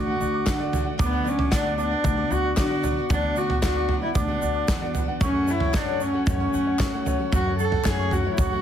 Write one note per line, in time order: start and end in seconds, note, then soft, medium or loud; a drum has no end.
0.00 0.14 D2 loud
0.00 0.69 F#4 medium
0.00 0.20 D5 medium
0.00 0.33 D6 medium
0.06 0.45 A3 soft
0.06 0.46 D4 soft
0.06 0.46 F#4 medium
0.06 0.46 F#5 medium
0.20 0.41 D2 medium
0.20 0.58 D5 medium
0.20 shaker medium
0.34 0.87 D6 medium
0.46 0.60 D3 medium
0.46 0.87 D3 loud
0.46 0.60 F#3 medium
0.46 0.60 A3 medium
0.46 0.59 D4 medium
0.46 0.58 F#4 medium
0.46 0.85 F#5 medium
0.46 kick loud
0.46 snare loud
0.46 clap medium
0.46 shaker medium
0.59 0.72 A3 soft
0.59 0.73 D4 soft
0.59 0.73 F#4 medium
0.59 1.00 D5 medium
0.72 0.86 F#3 medium
0.72 0.86 A3 medium
0.72 0.85 D4 medium
0.72 0.84 F#4 medium
0.72 floor tom medium
0.72 shaker medium
0.85 0.98 A3 soft
0.85 0.98 D4 soft
0.85 0.98 F#4 medium
0.85 1.00 F#5 medium
0.98 1.40 D2 loud
0.98 1.25 D3 medium
0.98 1.23 F#3 medium
0.98 1.24 B3 medium
0.98 1.25 D4 medium
0.98 1.25 F#4 medium
0.98 1.37 D6 medium
0.98 kick loud
0.98 floor tom loud
0.98 shaker loud
1.03 1.30 B3 medium
1.12 1.50 F#5 medium
1.24 1.50 F#3 medium
1.24 1.50 B3 medium
1.24 1.51 D4 medium
1.24 1.51 F#4 medium
1.24 1.64 D5 medium
1.24 shaker medium
1.28 1.53 C#4 medium
1.38 1.76 D6 medium
1.38 floor tom medium
1.51 1.92 D2 medium
1.51 1.78 D3 medium
1.51 1.76 F#3 medium
1.51 1.77 B3 medium
1.51 1.78 D4 medium
1.51 1.78 F#4 medium
1.51 1.90 F#5 medium
1.51 kick loud
1.51 snare loud
1.51 clap medium
1.51 shaker medium
1.65 2.03 D5 medium
1.78 1.91 F#3 medium
1.78 1.92 B3 medium
1.78 1.91 D4 medium
1.78 2.33 D4 loud
1.78 1.90 F#4 medium
1.78 2.16 D6 medium
1.78 shaker medium
1.91 2.18 B3 soft
1.91 2.17 D4 soft
1.91 2.16 F#4 medium
1.91 2.29 F#5 medium
2.04 2.25 D2 loud
2.04 2.43 D5 medium
2.04 kick loud
2.04 floor tom loud
2.04 shaker medium
2.17 2.56 B3 soft
2.17 2.57 D4 medium
2.17 2.57 F#4 medium
2.17 2.55 D6 medium
2.30 2.51 D2 medium
2.30 2.58 F#4 loud
2.30 2.69 F#5 medium
2.30 shaker medium
2.44 2.82 D5 medium
2.57 2.70 D3 medium
2.57 2.98 D3 loud
2.57 2.71 F#3 medium
2.57 2.70 B3 medium
2.57 2.69 D4 medium
2.57 2.95 F#4 medium
2.57 2.68 F#4 medium
2.57 3.10 D6 medium
2.57 kick medium
2.57 snare loud
2.57 clap loud
2.57 shaker medium
2.69 2.83 B3 soft
2.69 2.83 D4 soft
2.69 2.83 F#4 medium
2.69 3.09 F#5 medium
2.83 2.97 F#3 medium
2.83 2.97 B3 medium
2.83 2.97 D4 medium
2.83 2.96 F#4 medium
2.83 3.22 D5 medium
2.83 floor tom medium
2.83 shaker medium
2.97 3.10 B3 soft
2.97 3.11 D4 soft
2.97 3.11 F#4 medium
3.10 3.50 D2 loud
3.10 3.37 D3 medium
3.10 3.35 F#3 medium
3.10 3.36 B3 medium
3.10 3.39 D4 loud
3.10 3.36 D4 medium
3.10 3.37 F#4 medium
3.10 3.48 F#5 medium
3.10 kick loud
3.10 floor tom loud
3.10 shaker medium
3.23 3.62 D5 medium
3.36 3.61 F#3 medium
3.36 3.62 B3 medium
3.36 3.62 D4 medium
3.36 3.63 F#4 medium
3.36 3.74 D6 medium
3.36 shaker medium
3.50 3.87 F#5 medium
3.50 floor tom medium
3.62 4.03 D2 medium
3.62 3.89 D3 medium
3.62 3.87 F#3 medium
3.62 3.88 B3 medium
3.62 3.88 D4 medium
3.62 4.00 F#4 medium
3.62 3.89 F#4 medium
3.62 4.01 D5 medium
3.62 kick medium
3.62 snare loud
3.62 clap medium
3.62 shaker medium
3.76 4.14 D6 medium
3.88 4.02 F#3 medium
3.88 4.02 B3 medium
3.88 4.01 D4 medium
3.88 4.00 F#4 medium
3.88 4.27 F#5 medium
3.88 floor tom medium
4.01 4.29 B3 soft
4.01 4.28 D4 soft
4.01 4.15 E4 medium
4.01 4.27 F#4 soft
4.01 4.41 D5 medium
4.15 4.36 D2 medium
4.15 4.92 D4 medium
4.15 4.53 D6 medium
4.15 kick loud
4.15 floor tom loud
4.15 shaker medium
4.28 4.67 B3 soft
4.28 4.67 D4 soft
4.28 4.67 F#4 medium
4.28 4.67 F#5 medium
4.42 4.62 D2 medium
4.42 4.80 D5 medium
4.42 shaker medium
4.55 5.08 D6 medium
4.68 5.09 E2 medium
4.68 4.81 D3 medium
4.68 4.81 F#3 medium
4.68 4.82 B3 medium
4.68 4.82 D4 medium
4.68 4.81 F#4 medium
4.68 5.07 F#5 medium
4.68 kick loud
4.68 snare medium
4.68 clap medium
4.68 shaker medium
4.82 4.94 B3 soft
4.82 4.94 D4 soft
4.82 4.95 F#4 soft
4.82 5.21 D5 medium
4.94 5.08 F#3 medium
4.94 5.08 B3 medium
4.94 5.07 D4 medium
4.94 5.07 F#4 medium
4.94 floor tom medium
4.94 shaker medium
5.08 5.22 B3 soft
5.08 5.22 D4 soft
5.08 5.21 F#4 soft
5.08 5.21 F#5 medium
5.21 5.61 F#2 loud
5.21 5.48 F#2 medium
5.21 5.48 C#3 medium
5.21 5.46 F#3 medium
5.21 8.62 F#3 medium
5.21 5.47 A3 medium
5.21 8.62 A3 soft
5.21 5.47 C#4 medium
5.21 8.62 C#4 medium
5.21 5.52 C#4 loud
5.21 5.48 F#4 medium
5.21 5.59 C#6 medium
5.21 kick loud
5.21 floor tom loud
5.21 shaker medium
5.34 5.73 F#5 medium
5.47 5.74 F#3 medium
5.47 5.74 A3 medium
5.47 5.74 C#4 medium
5.47 5.78 E4 medium
5.47 5.75 F#4 medium
5.47 5.86 C#5 medium
5.47 shaker medium
5.60 5.99 C#6 medium
5.60 floor tom medium
5.74 6.14 F#2 medium
5.74 6.01 F#2 medium
5.74 6.01 C#3 medium
5.74 5.99 F#3 medium
5.74 6.00 A3 medium
5.74 6.00 C#4 medium
5.74 6.04 D4 medium
5.74 6.01 F#4 medium
5.74 6.13 F#5 medium
5.74 kick loud
5.74 snare loud
5.74 clap medium
5.74 shaker medium
5.88 6.26 C#5 medium
6.00 6.13 F#3 medium
6.00 6.13 A3 medium
6.00 6.12 C#4 medium
6.00 6.28 C#4 medium
6.00 6.12 F#4 medium
6.00 6.39 C#6 medium
6.00 shaker medium
6.13 6.40 F#3 soft
6.13 6.40 A3 soft
6.13 6.39 C#4 soft
6.13 6.38 F#4 medium
6.13 6.52 F#5 medium
6.27 6.47 F#2 loud
6.27 7.03 C#4 medium
6.27 6.65 C#5 medium
6.27 kick loud
6.27 floor tom loud
6.27 shaker medium
6.39 6.78 F#3 soft
6.39 6.79 A3 soft
6.39 6.78 C#4 medium
6.39 6.79 F#4 medium
6.39 6.79 C#6 medium
6.54 6.74 F#2 medium
6.54 6.92 F#5 medium
6.54 shaker medium
6.67 7.06 C#5 medium
6.79 6.92 F#2 medium
6.79 6.93 C#3 medium
6.79 6.93 F#3 medium
6.79 7.20 F#3 loud
6.79 6.93 A3 medium
6.79 6.92 C#4 medium
6.79 6.91 F#4 medium
6.79 7.33 C#6 medium
6.79 kick loud
6.79 snare loud
6.79 clap loud
6.79 shaker medium
6.92 7.04 F#3 soft
6.92 7.04 A3 soft
6.92 7.05 C#4 soft
6.92 7.06 F#4 medium
6.92 7.33 F#5 medium
7.05 7.19 F#3 medium
7.05 7.19 A3 medium
7.05 7.18 C#4 medium
7.05 7.18 F#4 medium
7.05 7.46 C#5 medium
7.05 floor tom medium
7.05 shaker medium
7.19 7.31 F#3 soft
7.19 7.32 A3 soft
7.19 7.32 C#4 soft
7.19 7.33 F#4 medium
7.32 7.59 F#2 medium
7.32 7.73 F#2 loud
7.32 7.59 C#3 medium
7.32 7.58 F#3 medium
7.32 7.58 A3 medium
7.32 7.59 C#4 medium
7.32 7.57 F#4 loud
7.32 7.60 F#4 medium
7.32 7.72 F#5 medium
7.32 kick loud
7.32 floor tom loud
7.32 shaker medium
7.47 7.85 C#5 medium
7.59 7.84 F#3 medium
7.59 7.85 A3 medium
7.59 7.85 C#4 medium
7.59 7.85 F#4 medium
7.59 7.87 A4 medium
7.59 7.98 C#6 medium
7.59 shaker medium
7.72 8.11 F#5 medium
7.72 floor tom medium
7.84 8.12 F#2 medium
7.84 8.26 F#2 medium
7.84 8.12 C#3 medium
7.84 8.09 F#3 medium
7.84 8.10 A3 medium
7.84 8.10 C#4 medium
7.84 8.11 F#4 loud
7.84 8.14 G#4 medium
7.84 8.25 C#5 medium
7.84 kick loud
7.84 snare loud
7.84 clap medium
7.84 shaker medium
7.99 8.39 C#6 medium
8.10 8.24 F#3 medium
8.10 8.24 A3 medium
8.10 8.23 C#4 medium
8.10 8.32 F#4 medium
8.10 8.22 F#4 medium
8.10 8.51 F#5 medium
8.10 floor tom medium
8.10 shaker medium
8.24 8.51 F#3 soft
8.24 8.50 A3 soft
8.24 8.50 C#4 soft
8.24 8.49 F#4 medium
8.24 8.62 C#5 medium
8.33 8.41 E4 medium
8.38 8.58 F#2 medium
8.38 8.62 F#4 medium
8.38 8.62 C#6 medium
8.38 kick loud
8.38 floor tom loud
8.38 shaker loud
8.50 8.62 F#3 soft
8.50 8.62 A3 medium
8.50 8.62 C#4 soft
8.50 8.62 F#4 soft
8.50 8.62 F#5 medium